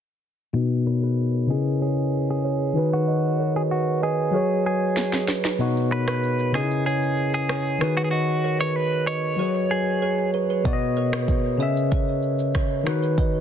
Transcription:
0.53 tine electric piano B2 B3 D#4 F#4, kalimba B4 D#5
0.86 kalimba A#4 C#5, clean electric guitar B4
1.03 kalimba G#4 B4, clean electric guitar B4
1.47 tine electric piano C#3 C#4 E4, clean electric guitar G#4, kalimba G#4 D#5
1.52 tine electric piano G#4
1.81 clean electric guitar G#4, kalimba G#4 C#5
2.30 clean electric guitar G#4
2.44 kalimba G#4 C#5
2.73 tine electric piano D#3 D#4 F#4, kalimba F#4 B4
2.78 tine electric piano B4
2.93 clean electric guitar F#4, kalimba G#4 B4
3.08 kalimba B4 D#5
3.39 kalimba A#4 C#5
3.56 clean electric guitar G#4, kalimba G#4 B4
3.71 clean electric guitar F#4
4.02 clean electric guitar G#4, kalimba B4 D#5
4.31 tine electric piano F#3 F#4 G#4, kalimba G#4 C#5
4.36 tine electric piano C#5
4.66 clean electric guitar G#4
4.97 kalimba G#4 C#5, snare
5.13 snare
5.28 kalimba G#4 B4, snare
5.45 kalimba G#4 B4, snare
5.59 tine electric piano B2 B3 D#4 F#4, kalimba B4 D#5, shaker
5.77 shaker
5.91 kalimba A#4 C#5, clean electric guitar B4, shaker
6.08 kalimba G#4 B4, clean electric guitar B4, finger snap, cross-stick, shaker
6.23 shaker
6.39 shaker
6.52 tine electric piano C#3 C#4 D#4, clean electric guitar G#4, kalimba G#4 D#5, finger snap, cross-stick, shaker
6.57 tine electric piano G#4
6.62 tine electric piano E4
6.71 shaker
6.86 clean electric guitar G#4, kalimba G#4 C#5, shaker
7.03 shaker
7.17 shaker
7.33 clean electric guitar G#4, shaker
7.49 kalimba G#4 C#5, finger snap, cross-stick, shaker
7.66 shaker
7.79 tine electric piano D#3 D#4 F#4, kalimba F#4 B4, finger snap, cross-stick, shaker
7.83 tine electric piano B4
7.97 clean electric guitar F#4, kalimba G#4 B4, shaker
8.04 clean electric guitar G#4
8.11 clean electric guitar F#4, kalimba B4 D#5
8.44 kalimba A#4 C#5
8.61 kalimba G#4 B4, clean electric guitar C#5
8.76 clean electric guitar B4
9.07 kalimba B4 D#5, clean electric guitar C#5
9.36 tine electric piano F#3 F#4 G#4, kalimba G#4 C#5
9.41 tine electric piano C#5
9.71 clean electric guitar G#4
10.02 kalimba G#4 C#5
10.34 kalimba G#4 B4
10.50 kalimba G#4 B4
10.64 tine electric piano B2 B3 F#4 D5, kalimba B4 D#5, kick, shaker
10.73 tine electric piano D#5
10.96 kalimba A#4 C#5, shaker
11.13 kalimba G#4 B4, finger snap, cross-stick, shaker
11.28 kick, shaker
11.58 tine electric piano C#3 C#4 G#4, kalimba G#4 D#5, shaker
11.62 tine electric piano E5
11.76 shaker
11.92 kalimba G#4 C#5, kick, shaker
12.22 shaker
12.39 shaker
12.54 kalimba G#4 C#5, finger snap, kick, cross-stick, shaker
12.84 tine electric piano D#3 D#4 F#4, kalimba F#4 B4, finger snap, cross-stick, shaker
12.89 tine electric piano B4
13.03 kalimba G#4 B4, shaker
13.18 kalimba B4 D#5, kick, shaker

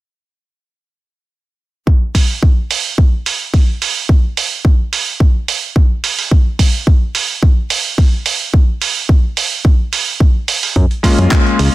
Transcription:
1.87 kick
2.15 kick, open hi-hat
2.43 kick
2.71 open hi-hat
2.98 kick
3.26 open hi-hat
3.54 kick, open hi-hat
3.82 open hi-hat
4.09 kick
4.37 open hi-hat
4.65 kick
4.93 open hi-hat
5.20 kick
5.48 open hi-hat
5.76 kick
6.04 open hi-hat
6.19 open hi-hat
6.31 kick
6.59 kick, open hi-hat
6.87 kick
7.15 open hi-hat
7.43 kick
7.70 open hi-hat
7.98 kick, open hi-hat
8.26 open hi-hat
8.54 kick
8.82 open hi-hat
9.09 kick
9.37 open hi-hat
9.65 kick
9.93 open hi-hat
10.20 kick
10.48 open hi-hat
10.63 open hi-hat
10.76 analog synth bass F#2, kick, closed hi-hat
10.91 closed hi-hat
11.03 electric grand piano G#3 A#3 C#4 F4, kick, open hi-hat
11.19 analog synth bass F#2, closed hi-hat
11.31 kick, clap, closed hi-hat
11.46 closed hi-hat
11.59 analog synth bass C#2, open hi-hat

